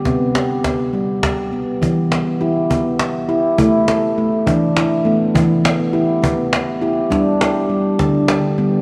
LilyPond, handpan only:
<<
  \new Staff \with { instrumentName = "Handpan" } { \time 6/8 \key e \minor \tempo 4. = 68 b8 g'8 b4 g'8 b8 | r8 b8 g'8 r4 g'8 | e'8 a'4 d'8 e'8 b8 | r8 b8 g'8 r4 g'8 |
d'8 g'4 d'8 g'8 b8 | }
  \new Staff \with { instrumentName = "Handpan" } { \clef bass \time 6/8 \key e \minor c4. g4. | e4 e'8 b4 e'8 | a4 a8 e4 a8 | e4 e'8 b4 e'8 |
g4 g8 d4 g8 | }
>>